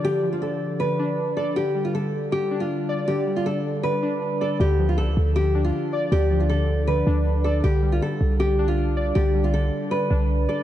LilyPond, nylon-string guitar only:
\new Staff \with { instrumentName = "Nylon-string guitar" } { \time 4/4 \key d \dorian \tempo 4 = 158 g'8. f'16 a'4 b'4. a'8 | g'8. f'16 a'4 g'8. f'4~ f'16 | g'8. f'16 a'4 b'4. a'8 | g'8. f'16 a'4 g'8. f'4~ f'16 |
g'8. f'16 a'4 b'4. a'8 | g'8. f'16 a'4 g'8. f'4~ f'16 | g'8. f'16 a'4 b'4. a'8 | }